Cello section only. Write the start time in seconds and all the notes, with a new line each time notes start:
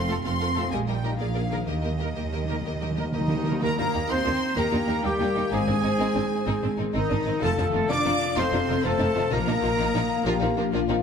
Already playing: C4
0.25 C4
0.73 G#3
0.89 G3
1.20 F3
1.68 D#3
3.14 D#3
3.64 A#3
3.79 A#3
4.10 C4
4.58 A#3
5.05 G3
5.53 G#3
6.95 D#3
7.44 A3
7.59 A3
7.91 D4
8.38 C4
8.85 A3
9.32 A#3